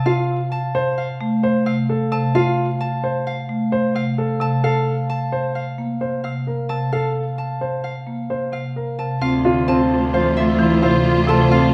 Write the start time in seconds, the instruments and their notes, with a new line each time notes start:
Already playing: marimba C3, harp A5
0.06 grand piano F4, harp F5
0.52 harp A5
0.75 grand piano C5
0.98 harp F5
1.21 marimba A3
1.43 grand piano C5
1.66 marimba C3, harp F5
1.89 grand piano A4
2.12 marimba C3, harp A5
2.35 grand piano F4, harp F5
2.81 harp A5
3.04 grand piano C5
3.27 harp F5
3.49 marimba A3
3.72 grand piano C5
3.95 marimba C3, harp F5
4.18 grand piano A4
4.40 marimba C3, harp A5
4.64 grand piano A4, harp F5
5.10 harp A5
5.32 grand piano C5
5.55 harp F5
5.78 marimba A#3
6.01 grand piano C5
6.24 marimba C3, harp F5
6.47 grand piano A#4
6.69 marimba C3, harp A5
6.93 grand piano A4, harp F5
7.38 harp A5
7.61 grand piano C5
7.84 harp F5
8.07 marimba A#3
8.30 grand piano C5
8.53 marimba C3, harp F5
8.76 grand piano A#4
8.99 marimba C3, harp A5
9.22 cello D2, marimba C4, string section F4 C5, clarinet F4, harp F5
9.45 marimba D3, grand piano F4, clarinet F4
9.68 marimba C4, grand piano C4, clarinet F4, harp A5
9.91 clarinet F4
10.13 marimba E3, clarinet F4, grand piano C5, harp F5
10.36 marimba A3, clarinet F4, harp E5
10.59 marimba E3, grand piano E4, clarinet F4
10.82 marimba C3, clarinet F4, grand piano C5, harp F5
11.05 clarinet F4
11.27 marimba C3, clarinet F4, grand piano A4, harp A5
11.51 marimba C4, clarinet F4, harp F5